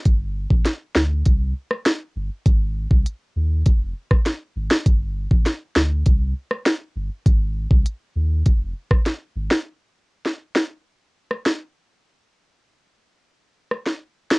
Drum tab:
HH |x---x---x---x---|x---x---x---x---|x---x---x---x---|x---x---x---x---|
SD |----o-o----ro---|-----------ro--o|----o-o----ro---|-----------ro--o|
BD |o--o----o-------|o--o----o--o----|o--o----o-------|o--o----o--o----|

HH |----------------|----------------|
SD |----o-o----ro---|-----------ro--o|
BD |----------------|----------------|